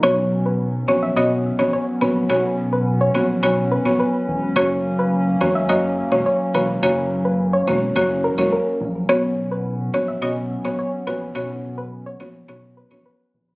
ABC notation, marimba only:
X:1
M:4/4
L:1/16
Q:1/4=106
K:F#mix
V:1 name="Marimba"
[B,CFc]6 [B,CFc]2 [B,CFc] z2 [B,CFc] z2 [B,CFc] z | [B,CFc]6 [B,CFc]2 [B,CFc] z2 [B,CFc] z4 | [A,CFc]6 [A,CFc]2 [A,CFc] z2 [A,CFc] z2 [A,CFc] z | [A,CFc]6 [A,CFc]2 [A,CFc] z2 [A,CFc] z4 |
[B,CFc]6 [B,CFc]2 [B,CFc] z2 [B,CFc] z2 [B,CFc] z | [B,CFc]6 [B,CFc]2 [B,CFc] z2 [B,CFc] z4 |]